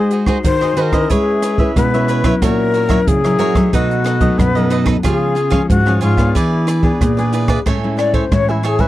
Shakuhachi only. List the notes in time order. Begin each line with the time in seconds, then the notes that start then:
Already playing: G#4
0.45 C5
0.77 B4
0.82 A#4
1.10 G#4
1.76 B4
2.42 A#4
3.08 G#4
3.74 F#4
4.38 B4
5.05 G4
5.17 G#4
5.70 F#4
6.03 F4
6.36 E4
7.02 G#4
7.98 D5
8.15 C5
8.32 C#5
8.50 E4
8.65 G#4
8.80 B4